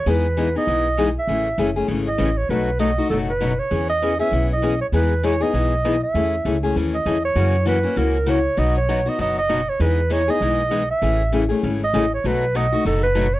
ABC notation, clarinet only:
X:1
M:4/4
L:1/8
Q:"Swing" 1/4=197
K:E
V:1 name="Clarinet"
B3 d4 e- | e3 z2 d2 c | B2 d2 A B2 c- | c d2 e2 d2 c |
B2 c d4 e- | e3 z2 d2 c- | c2 B2 ^A2 c2 | d c2 d d d2 c |
B2 c d4 e- | e3 z2 d2 c | B2 d2 A B2 c |]